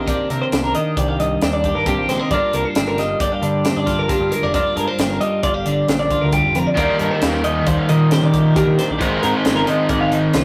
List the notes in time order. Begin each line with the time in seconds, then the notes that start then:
Already playing: A#1 D#3
0.07 C3 A#3 D4 G4 D5, kick, closed hi-hat
0.30 C3 A#3 A#4, closed hi-hat
0.42 C5
0.52 C2 D4, snare, closed hi-hat
0.64 A#4
0.75 D#3 D#5, closed hi-hat
0.97 C2 G4 D5, kick, closed hi-hat
1.08 F5
1.19 G2 D#5, closed hi-hat
1.42 D#2 D4 C5, snare, closed hi-hat
1.53 D5
1.64 G4, kick, closed hi-hat
1.75 G2 A#4
1.86 C3 A#3 D4 G4, kick, closed hi-hat
1.98 A#1
2.09 A#1 G#3 C5, snare, closed hi-hat
2.20 A#3 D#5
2.31 G1 G2 A#3 D4 F4 D5, kick, closed hi-hat
2.53 C2 A#3 A#4, closed hi-hat
2.65 C5
2.75 G1 D4, snare, closed hi-hat
2.88 A#4
2.98 G3 D#5, snare, closed hi-hat
3.20 G1 G4 D5, kick, closed hi-hat
3.32 F5
3.42 G2 D3 D5, closed hi-hat
3.65 D4 C5, snare, closed hi-hat
3.76 G2 D5
3.86 F4, kick, snare, closed hi-hat
3.99 A#4
4.08 G2 A#3 D4 F4 G4, kick, closed hi-hat
4.20 G2
4.30 G#3 A#4, closed hi-hat
4.43 F1 A#3 D5
4.53 G2 A#3 D4 F4 D5, kick, closed hi-hat
4.75 G2 G#3 A#4, closed hi-hat
4.88 A#3 C5
4.99 G1 D4, snare, closed hi-hat
5.10 A#4
5.21 G3 D#5, closed hi-hat
5.43 G1 F4 D5, kick, closed hi-hat
5.54 G4 F5
5.66 D3 D5, closed hi-hat
5.88 A#1 D4 C5, snare, closed hi-hat
5.99 D5
6.11 F4, kick, closed hi-hat
6.21 D2 A#4
6.32 G2 G4, kick, closed hi-hat
6.45 F1
6.55 F1 F2 A#4, closed hi-hat
6.67 D5
6.75 D#2 D#3 G3 A#3 D4 D#4 G4 A#4 D5, kick, closed hi-hat
6.99 G2 A#4, closed hi-hat
7.11 C5
7.22 D#2 G4, snare, closed hi-hat
7.33 A#4
7.44 D#3 D#5, closed hi-hat
7.66 D#2 C5 D5, kick, closed hi-hat
7.78 F5
7.89 A#2 D#3 D#5, closed hi-hat
8.11 G4 C5, snare, closed hi-hat
8.23 D#3 D5
8.34 G4, kick, closed hi-hat
8.45 A#4
8.56 D#2 D4 G4 A#4, kick, closed hi-hat
8.67 D#3
8.79 D4 C5, snare, closed hi-hat
8.89 A#1 D5
8.98 G#1 G#2 D#3 G#3 C4 F4 C5, kick, closed hi-hat
9.02 D#4 A#4
9.23 G#2 C4 A#4, closed hi-hat
9.34 C5
9.45 G#1 F4, snare, closed hi-hat
9.56 A#4
9.66 D#3 D#5, closed hi-hat
9.89 G#1 A#4 D5, kick, closed hi-hat
10.01 F5
10.12 D#3 D#5, closed hi-hat
10.34 C2 F4 C5, snare, closed hi-hat